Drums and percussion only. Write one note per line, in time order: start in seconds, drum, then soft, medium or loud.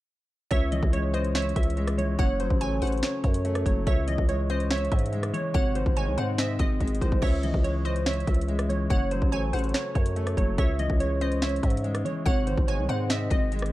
0.51 kick loud
0.51 closed hi-hat medium
0.72 closed hi-hat medium
0.83 kick loud
0.93 closed hi-hat medium
1.14 closed hi-hat medium
1.24 closed hi-hat medium
1.35 finger snap medium
1.35 snare loud
1.35 closed hi-hat soft
1.42 closed hi-hat medium
1.49 closed hi-hat medium
1.56 kick loud
1.56 closed hi-hat medium
1.63 closed hi-hat medium
1.70 closed hi-hat medium
1.77 closed hi-hat soft
1.88 cross-stick loud
1.88 closed hi-hat medium
1.99 closed hi-hat medium
2.19 kick loud
2.19 closed hi-hat medium
2.40 closed hi-hat medium
2.50 kick medium
2.61 closed hi-hat medium
2.82 closed hi-hat medium
2.82 open hi-hat medium
2.87 closed hi-hat medium
2.92 closed hi-hat medium
2.98 closed hi-hat soft
3.03 finger snap medium
3.03 snare loud
3.03 closed hi-hat medium
3.24 kick loud
3.24 closed hi-hat medium
3.34 closed hi-hat medium
3.45 closed hi-hat medium
3.55 cross-stick loud
3.55 closed hi-hat medium
3.66 kick medium
3.66 closed hi-hat medium
3.87 kick loud
3.87 closed hi-hat medium
4.08 closed hi-hat medium
4.18 kick medium
4.29 closed hi-hat medium
4.50 closed hi-hat medium
4.60 closed hi-hat medium
4.71 finger snap medium
4.71 snare loud
4.71 closed hi-hat soft
4.78 closed hi-hat soft
4.85 closed hi-hat soft
4.92 kick loud
4.92 closed hi-hat medium
4.99 closed hi-hat medium
5.06 closed hi-hat medium
5.13 closed hi-hat soft
5.23 cross-stick loud
5.23 closed hi-hat medium
5.34 closed hi-hat medium
5.55 kick loud
5.55 closed hi-hat medium
5.75 closed hi-hat medium
5.86 kick loud
5.97 closed hi-hat medium
6.18 closed hi-hat medium
6.38 finger snap medium
6.38 snare loud
6.38 closed hi-hat medium
6.59 kick loud
6.59 closed hi-hat medium
6.80 kick medium
6.80 closed hi-hat medium
6.87 closed hi-hat medium
6.95 closed hi-hat medium
7.01 kick loud
7.01 closed hi-hat medium
7.12 kick loud
7.22 kick loud
7.22 crash medium
7.43 closed hi-hat medium
7.54 kick loud
7.64 closed hi-hat medium
7.85 closed hi-hat medium
7.96 closed hi-hat medium
8.06 finger snap medium
8.06 snare loud
8.06 closed hi-hat medium
8.13 closed hi-hat medium
8.20 closed hi-hat soft
8.27 kick loud
8.27 closed hi-hat medium
8.34 closed hi-hat medium
8.41 closed hi-hat medium
8.48 closed hi-hat soft
8.59 cross-stick loud
8.59 closed hi-hat medium
8.70 closed hi-hat medium
8.90 kick loud
8.90 closed hi-hat medium
9.11 closed hi-hat medium
9.22 kick medium
9.32 closed hi-hat medium
9.53 closed hi-hat medium
9.53 open hi-hat medium
9.59 closed hi-hat medium
9.64 closed hi-hat soft
9.69 closed hi-hat soft
9.74 finger snap medium
9.74 snare loud
9.74 closed hi-hat medium
9.95 kick loud
9.95 closed hi-hat medium
10.06 closed hi-hat medium
10.16 closed hi-hat medium
10.27 cross-stick loud
10.27 closed hi-hat medium
10.37 kick medium
10.37 closed hi-hat medium
10.58 kick loud
10.58 closed hi-hat medium
10.79 closed hi-hat medium
10.90 kick loud
11.00 closed hi-hat medium
11.21 closed hi-hat medium
11.32 closed hi-hat medium
11.42 finger snap medium
11.42 snare loud
11.42 closed hi-hat medium
11.49 closed hi-hat medium
11.56 closed hi-hat medium
11.63 kick loud
11.63 closed hi-hat medium
11.70 closed hi-hat medium
11.77 closed hi-hat medium
11.84 closed hi-hat soft
11.95 cross-stick loud
11.95 closed hi-hat medium
12.06 closed hi-hat medium
12.26 kick loud
12.26 closed hi-hat medium
12.47 closed hi-hat medium
12.58 kick medium
12.68 closed hi-hat medium
12.89 closed hi-hat medium
13.10 finger snap medium
13.10 snare loud
13.10 closed hi-hat medium
13.31 kick loud
13.31 closed hi-hat medium
13.52 closed hi-hat medium
13.59 cross-stick loud
13.59 closed hi-hat medium
13.66 closed hi-hat medium